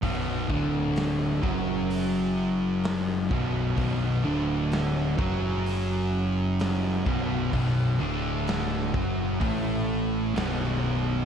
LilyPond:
<<
  \new Staff \with { instrumentName = "Distorted electric guitar" } { \clef bass \time 4/4 \key b \minor \tempo 4 = 64 <b,, b,>8 <d, d>4 <fis, fis>2 <b,, b,>8 | <b,, b,>8 <d, d>4 <fis, fis>2 <b,, b,>8 | <b,, b,>8 <d, d>4 <fis, fis>8 <a, a>4 <b,, b,>4 | }
  \new Staff \with { instrumentName = "Distorted electric guitar" } { \clef bass \time 4/4 \key b \minor <b,, b,>8 <d, d>4 <fis, fis>2 <b,, b,>8 | <b,, b,>8 <d, d>4 <fis, fis>2 <b,, b,>8 | <b,, b,>8 <d, d>4 <fis, fis>8 <a, a>4 <b,, b,>4 | }
  \new Staff \with { instrumentName = "Overdriven electric guitar" } { \clef bass \time 4/4 \key b \minor <b,, b,>8 <d, d>4 <fis, fis>2 <b,, b,>8 | <b,, b,>8 <d, d>4 <fis, fis>2 <b,, b,>8 | <b,, b,>8 <d, d>4 <fis, fis>8 <a, a>4 <b,, b,>4 | }
  \new Staff \with { instrumentName = "Picked electric bass" } { \clef bass \time 4/4 \key b \minor b,,,8 d,,4 fis,,2 b,,,8 | b,,,8 d,,4 fis,,2 b,,,8 | b,,,8 d,,4 fis,,8 a,,4 b,,,4 | }
  \new DrumStaff \with { instrumentName = "Drums" } \drummode { \time 4/4 <hho bd>8 bd8 <hho sn>8 bd8 hho4 <hho sn>8 bd8 | <hho bd>4 <hho sn>8 bd8 hho4 <hho sn>8 bd8 | <hho bd>4 <hho sn>8 bd8 <hho bd>4 <hho sn>4 | }
>>